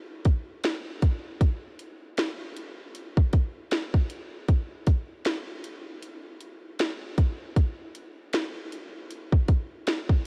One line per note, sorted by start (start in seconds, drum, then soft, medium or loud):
0.25 kick loud
0.25 closed hi-hat medium
0.64 snare loud
0.64 closed hi-hat medium
1.02 kick loud
1.02 closed hi-hat medium
1.41 kick loud
1.41 closed hi-hat medium
1.79 closed hi-hat medium
2.17 snare loud
2.17 closed hi-hat medium
2.56 closed hi-hat medium
2.95 closed hi-hat medium
3.17 kick loud
3.33 kick loud
3.33 closed hi-hat medium
3.71 snare loud
3.71 closed hi-hat medium
3.94 kick medium
4.10 closed hi-hat medium
4.48 kick loud
4.48 closed hi-hat medium
4.87 kick loud
4.87 closed hi-hat medium
5.25 snare loud
5.25 closed hi-hat medium
5.64 closed hi-hat medium
6.02 closed hi-hat medium
6.41 closed hi-hat medium
6.79 snare loud
6.79 closed hi-hat medium
7.18 kick medium
7.18 closed hi-hat medium
7.56 kick loud
7.56 closed hi-hat medium
7.95 closed hi-hat medium
8.33 snare loud
8.33 closed hi-hat medium
8.72 closed hi-hat medium
9.11 closed hi-hat medium
9.33 kick loud
9.48 kick loud
9.48 closed hi-hat medium
9.87 snare loud
9.87 closed hi-hat medium
10.09 kick medium